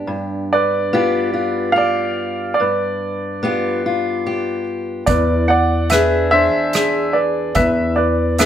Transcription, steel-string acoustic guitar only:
0.00 0.93 B3 soft
0.00 0.93 D4 soft
0.00 0.94 G4 medium
0.07 2.52 G2 medium
0.93 3.42 B3 medium
0.93 1.33 F4 soft
0.93 1.75 G4 medium
1.34 2.53 F4 soft
1.76 2.53 G4 medium
2.60 5.03 G2 medium
3.43 6.93 B3 soft
3.43 3.84 F4 medium
3.43 4.25 G4 medium
3.86 5.04 F4 soft
4.26 5.03 G4 medium
5.09 7.52 E2 medium
5.92 6.32 D4 medium
5.92 6.74 G#4 medium
6.32 7.51 D4 soft
6.75 7.52 G#4 medium
7.58 8.46 E2 medium
8.39 8.46 B3 soft
8.39 8.46 D4 soft
8.39 8.46 G#4 medium

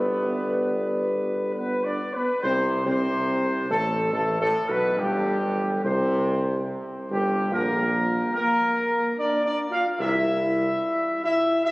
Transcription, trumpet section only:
0.00 1.51 B4 medium
1.54 1.82 B4 medium
1.84 2.14 D5 medium
2.14 2.43 B4 medium
2.43 2.83 C5 loud
2.86 3.66 C5 loud
3.71 4.10 A4 loud
4.13 4.39 A4 loud
4.41 4.67 A4 loud
4.69 4.98 B4 loud
4.97 5.84 G4 loud
5.84 6.64 C5 medium
7.10 7.49 G4 loud
7.53 8.31 A#4 medium
8.35 9.13 A#4 loud
9.18 9.43 D5 loud
9.45 9.57 D5 loud
9.73 9.85 F5 loud
9.99 11.20 E5 loud
11.23 11.62 E5 loud
11.65 11.71 E5 loud

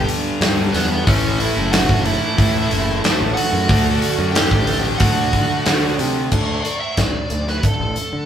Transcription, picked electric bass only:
0.41 0.69 G2 medium
0.74 1.02 E2 loud
1.08 1.50 A1 loud
1.57 1.85 F#1 medium
1.89 2.17 F#1 loud
2.39 2.67 A2 medium
2.72 3.00 F#1 medium
3.21 3.35 A1 medium
3.53 3.67 F#2 medium
3.70 3.98 D2 loud
4.18 4.47 F#2 medium
4.51 4.94 A1 medium
5.00 5.29 D2 loud
5.67 5.95 D3 medium
5.99 6.28 C3 loud
6.32 6.60 D2 loud
6.97 7.12 A1 medium
7.31 7.59 D2 medium
7.80 7.95 A1 medium
8.13 8.26 D3 medium

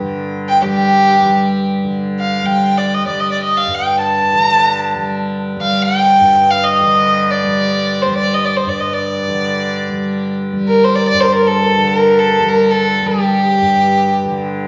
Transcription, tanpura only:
0.00 3.67 G2 medium
0.00 1.84 D3 medium
0.00 0.62 G3 medium
0.62 1.22 G3 medium
1.22 2.44 G3 medium
1.84 4.33 D3 soft
2.44 3.06 G3 medium
3.06 4.95 G3 soft
3.67 6.20 G2 medium
4.33 6.80 D3 medium
4.95 5.57 G3 soft
5.57 7.44 G3 medium
6.20 8.66 G2 medium
6.81 9.28 D3 medium
7.44 8.06 G3 medium
8.06 9.89 G3 medium
8.67 11.13 G2 medium
9.28 11.77 D3 medium
9.89 10.53 G3 medium
10.53 12.39 G3 medium
11.13 13.61 G2 medium
11.77 14.25 D3 medium
12.39 13.02 G3 medium
13.02 14.68 G3 medium
13.62 14.68 G2 medium
14.25 14.68 D3 medium

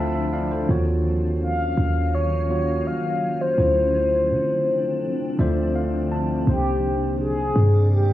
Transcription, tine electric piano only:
0.00 0.59 D3 medium
0.00 0.59 A3 medium
0.00 0.60 F4 medium
0.00 0.51 C5 medium
0.00 0.15 E5 medium
0.00 0.33 F5 medium
0.00 0.71 G5 medium
0.00 0.70 A5 medium
0.00 0.70 B5 medium
0.15 0.32 E5 medium
0.33 0.50 D5 medium
0.33 0.50 F5 medium
0.51 0.86 A4 medium
0.51 0.85 C5 medium
0.68 2.00 D#3 medium
0.68 2.01 A#3 medium
0.68 2.01 F4 medium
0.68 2.01 F#4 medium
0.68 2.02 C#5 medium
2.49 3.48 D#3 medium
2.49 3.48 A#3 medium
2.49 3.49 F4 medium
2.49 3.49 F#4 medium
2.49 3.49 C#5 medium
3.57 4.89 D3 medium
3.57 4.90 A3 medium
3.57 4.90 E4 medium
3.57 4.90 F4 medium
3.57 4.91 C5 medium
5.38 6.37 D3 medium
5.38 6.37 A3 medium
5.38 6.38 F4 medium
5.38 6.38 C5 loud
5.38 5.72 D5 medium
5.38 6.38 E5 medium
5.75 6.09 F5 medium
6.12 6.45 A5 medium
6.46 7.79 C3 medium
6.46 7.79 A#3 medium
6.46 7.79 D4 medium
6.46 7.79 D#4 medium
6.46 7.80 C5 medium

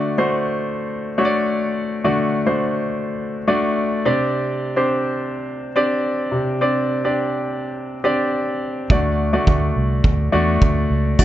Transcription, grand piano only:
0.00 0.57 D3 soft
0.00 0.15 A3 medium
0.00 0.15 D4 medium
0.00 0.15 F#4 medium
0.00 0.15 D5 medium
0.18 1.09 A3 medium
0.18 1.10 D4 medium
0.18 1.10 F#4 medium
0.18 1.10 C5 medium
1.18 1.96 A3 medium
1.18 1.96 D4 medium
1.18 1.97 F#4 medium
1.18 1.25 C#5 medium
1.25 2.00 D5 medium
2.04 2.86 D3 medium
2.04 2.43 A3 medium
2.04 2.44 D4 medium
2.04 2.44 F#4 medium
2.04 2.44 D5 medium
2.46 3.38 A3 medium
2.46 3.38 D4 soft
2.46 3.38 F#4 soft
2.46 3.38 C5 medium
3.47 4.05 A3 medium
3.47 4.04 D4 medium
3.47 4.05 F#4 medium
3.47 4.04 D5 medium
4.05 4.87 C3 medium
4.05 4.70 C4 medium
4.05 4.70 D4 medium
4.05 4.70 G4 medium
4.05 4.70 D5 medium
4.76 5.67 C4 medium
4.76 5.68 D4 medium
4.76 5.68 G4 medium
4.76 5.68 C5 medium
5.76 6.54 C4 medium
5.76 6.54 D4 medium
5.76 6.54 G4 medium
5.76 6.54 D5 medium
6.32 7.14 C3 medium
6.61 7.01 C4 medium
6.61 7.01 D4 medium
6.61 7.01 G4 soft
6.61 7.01 D5 medium
7.04 7.96 C4 medium
7.04 7.96 D4 medium
7.04 7.96 G4 medium
7.04 7.96 D5 medium
8.04 8.83 C4 medium
8.04 8.83 D4 medium
8.04 8.83 G4 medium
8.04 8.83 D5 medium
8.91 9.72 D3 medium
8.91 9.30 A3 medium
8.91 9.30 D4 medium
8.91 9.30 F#4 medium
8.91 9.30 D5 medium
9.33 10.24 A3 medium
9.33 10.25 D4 medium
9.33 10.25 F#4 medium
9.33 10.25 D5 medium
10.32 11.11 A3 medium
10.32 11.11 D4 medium
10.32 11.11 F#4 medium
10.32 11.11 D5 medium
11.19 11.25 D3 medium
11.19 11.25 A3 medium
11.19 11.25 D4 medium
11.19 11.25 F#4 medium
11.19 11.25 D5 medium

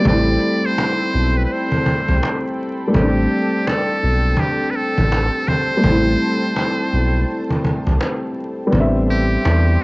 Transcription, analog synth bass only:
0.06 0.37 A1 loud
1.14 1.46 B1 medium
2.09 2.21 C2 medium
2.95 3.27 A1 loud
4.03 4.35 B1 medium
4.98 5.29 A1 medium
5.84 6.16 A1 loud
6.93 7.25 B1 medium
7.87 7.99 C2 medium
8.73 9.37 A1 loud
9.46 9.77 E2 medium

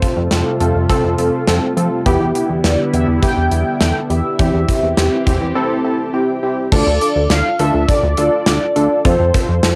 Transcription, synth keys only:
0.02 0.27 C4 medium
0.02 0.27 F4 medium
0.02 0.27 A4 medium
0.31 0.56 C4 medium
0.31 0.56 F4 medium
0.31 0.56 A4 loud
0.60 0.85 C4 medium
0.60 0.85 F4 medium
0.60 0.85 A4 loud
0.90 1.14 C4 loud
0.90 1.14 F4 loud
0.90 1.14 A4 loud
1.19 1.43 C4 medium
1.19 1.43 F4 medium
1.19 1.43 A4 loud
1.48 1.72 C4 medium
1.48 1.72 F4 medium
1.48 1.72 A4 loud
1.77 2.01 C4 medium
1.77 2.01 F4 medium
1.77 2.01 A4 loud
2.06 2.31 B3 loud
2.06 2.31 E4 loud
2.06 2.31 G4 loud
2.35 2.60 B3 medium
2.35 2.60 E4 medium
2.35 2.60 G4 medium
2.64 2.89 B3 medium
2.64 2.89 E4 medium
2.64 2.89 G4 medium
2.93 3.18 B3 medium
2.93 3.18 E4 medium
2.93 3.18 G4 medium
3.22 3.47 B3 loud
3.22 3.47 E4 medium
3.22 3.47 G4 loud
3.51 3.76 B3 medium
3.51 3.76 E4 medium
3.51 3.76 G4 medium
3.81 4.05 B3 medium
3.81 4.05 E4 medium
3.81 4.05 A4 medium
4.10 4.34 B3 medium
4.10 4.34 E4 medium
4.10 4.34 G4 medium
4.39 4.64 C4 medium
4.39 4.64 E4 medium
4.39 4.64 G4 loud
4.68 4.93 C4 medium
4.68 4.93 E4 medium
4.68 4.93 G4 medium
4.97 5.22 C4 medium
4.97 5.22 E4 medium
4.97 5.22 G4 loud
5.26 5.51 C4 medium
5.26 5.51 E4 medium
5.26 5.51 G4 loud
5.55 5.80 C4 loud
5.55 5.80 E4 loud
5.55 5.80 A4 loud
5.85 6.09 C4 medium
5.85 6.09 E4 medium
5.85 6.09 A4 loud
5.85 6.12 A5 medium
6.14 6.38 C4 medium
6.14 6.38 E4 medium
6.14 6.38 G4 loud
6.14 6.41 G5 medium
6.43 6.67 C4 medium
6.43 6.67 E4 medium
6.43 6.67 G4 loud
6.43 6.70 G5 medium
6.72 6.97 D4 loud
6.72 6.97 F4 medium
6.72 6.97 A4 loud
7.01 7.26 D4 medium
7.01 7.26 F4 medium
7.01 7.26 A4 medium
7.30 7.55 D4 medium
7.30 7.55 F4 medium
7.30 7.55 A4 medium
7.60 7.84 D4 loud
7.60 7.84 F4 medium
7.60 7.84 A4 loud
7.89 8.13 D4 medium
7.89 8.13 F4 medium
7.89 8.13 A4 medium
8.18 8.42 D4 loud
8.18 8.42 F4 medium
8.18 8.42 A4 loud
8.47 8.71 D4 medium
8.47 8.71 F4 medium
8.47 8.71 A4 medium
8.76 9.00 D4 medium
8.76 9.00 F4 medium
8.76 9.00 A4 loud
9.05 9.30 C4 loud
9.05 9.30 F4 medium
9.05 9.30 A4 loud
9.34 9.59 C4 medium
9.34 9.59 F4 medium
9.34 9.59 A4 medium
9.63 9.75 C4 medium
9.63 9.75 F4 medium
9.63 9.75 A4 medium

